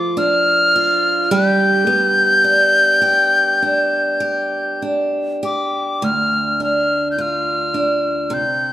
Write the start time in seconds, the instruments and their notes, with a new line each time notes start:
Already playing: steel-string acoustic guitar F3 A3 F4, tin whistle D6
0.17 steel-string acoustic guitar D4, tin whistle F6
0.76 steel-string acoustic guitar F4
1.31 steel-string acoustic guitar G3 G4, tin whistle G6
1.87 steel-string acoustic guitar B3
2.44 steel-string acoustic guitar D4
3.02 steel-string acoustic guitar G4
3.62 steel-string acoustic guitar D4
4.20 steel-string acoustic guitar G4
4.82 steel-string acoustic guitar D4
5.43 steel-string acoustic guitar G4, tin whistle D6
6.02 steel-string acoustic guitar D2, tin whistle F6
6.60 steel-string acoustic guitar D4, tin whistle F6
7.11 tin whistle G6
7.18 steel-string acoustic guitar F4, tin whistle F6
7.74 steel-string acoustic guitar D4
8.30 steel-string acoustic guitar C3, tin whistle G6